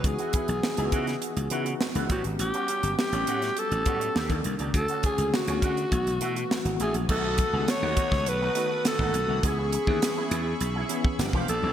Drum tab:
CC |----------------|----------------|----------------|x---------------|
HH |xxxx-xxxxxxx-xxx|xxxx-xxxxxxx-xxx|xxxx-xxxxxxx-xxx|--x-x-x-x-x-x-x-|
SD |----o--o----o---|----o--o----o---|----o-------o---|----o--o----o---|
BD |o-o---o-------o-|----------o--o--|o-o---o-o-------|o-o---oo-----o--|

CC |----------------|
HH |x-x-x-x-x-x-x-x-|
SD |----o-------o---|
BD |o--o-------o-o--|